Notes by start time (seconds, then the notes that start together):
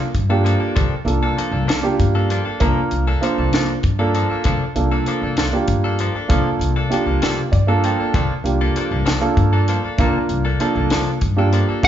0.14 G2, kick, closed hi-hat
0.29 A#3 D4 F4 G4 A4
0.44 F3 A#3 D4 A4, closed hi-hat
0.60 A#3 D4 A4, muted upright bass stroke
0.75 C2 F3 A#3 D4 A4, kick, closed hi-hat
0.90 muted upright bass stroke
1.05 C2 A#3 D4 F4 A4, closed hi-hat
1.23 A#3 D4 A4
1.37 F3 A#3 D4 A4, muted upright bass stroke, closed hi-hat
1.51 C2 A#3 D4 A4
1.67 C2 F3 A#3 D4 A4, snare, closed hi-hat
1.82 A#3 D4 F4 G4
1.99 G2, kick, closed hi-hat
2.15 A#3 D4 A4
2.30 F3 A#3 D4 A4, closed hi-hat
2.45 A#3 D4 A4, muted upright bass stroke
2.60 C2 F3 A#3 D4 F4 A4 A#4, kick, closed hi-hat
2.76 muted upright bass stroke
2.91 C2, closed hi-hat
3.07 A#3 D4 A4
3.21 F3 A#3 D4 F4 A4 C5, muted upright bass stroke, closed hi-hat
3.38 C2 A#3 D4 A4
3.53 C2 F3 A#3 D4 A4, snare, closed hi-hat
3.83 G2, kick, closed hi-hat
3.99 A#3 D4 F4 A4
4.15 F3 A#3 D4 A4, closed hi-hat
4.30 A#3 D4 A4, muted upright bass stroke
4.44 C2 F3 A#3 D4 A4, kick, closed hi-hat
4.60 muted upright bass stroke
4.75 C2 A#3 D4 F4 A4, closed hi-hat
4.92 A#3 D4 A4
5.06 F3 A#3 D4 A4, muted upright bass stroke, closed hi-hat
5.22 C2 A#3 D4 A4
5.37 C2 F3 A#3 D4 A4, snare, closed hi-hat
5.52 A#3 D4 F4 G4
5.67 G2, kick, closed hi-hat
5.84 A#3 D4 A4
5.99 F3 A#3 D4 A4, closed hi-hat
6.14 A#3 D4 A4, muted upright bass stroke
6.28 C2 F3 A#3 D4 F4 A4, kick, closed hi-hat
6.44 muted upright bass stroke
6.59 C2, closed hi-hat
6.76 A#3 D4 A4
6.90 F3 A#3 D4 F4 G4 A4, muted upright bass stroke, closed hi-hat
7.06 C2 A#3 D4 A4
7.22 C2 F3 A#3 D4 A4, snare, closed hi-hat
7.52 G2 D5, kick, closed hi-hat
7.67 A#3 D4 F4 A4
7.84 F3 A#3 D4 A4 G5, closed hi-hat
7.99 A#3 D4 A4, muted upright bass stroke
8.14 C2 F3 A#3 D4 A4, kick, closed hi-hat
8.30 muted upright bass stroke
8.44 C2 A#3 D4 F4 G4, closed hi-hat
8.61 A#3 D4 A4
8.76 F3 A#3 D4 A4, muted upright bass stroke, closed hi-hat
8.91 C2 A#3 D4 A4
9.05 C2 F3 A#3 D4 A4, snare, closed hi-hat
9.21 A#3 D4 F4 A4
9.37 G2, kick, closed hi-hat
9.53 A#3 D4 A4
9.68 F3 A#3 D4 A4, closed hi-hat
9.83 A#3 D4 A4, muted upright bass stroke
9.98 C2 F3 A#3 D4 F4 A4 A#4, kick, closed hi-hat
10.14 muted upright bass stroke
10.29 C2, closed hi-hat
10.45 A#3 D4 A4
10.60 F3 A#3 D4 F4 A4, muted upright bass stroke, closed hi-hat
10.75 C2 A#3 D4 A4
10.90 C2 F3 A#3 D4 A4, snare, closed hi-hat
11.21 G2, kick, closed hi-hat
11.36 A#3 D4 F4 G4 A4
11.53 F3 A#3 D4 A4, closed hi-hat
11.68 A#3 D4 A4, muted upright bass stroke
11.82 C2 B3 D4 E4 G4 F#5, kick, closed hi-hat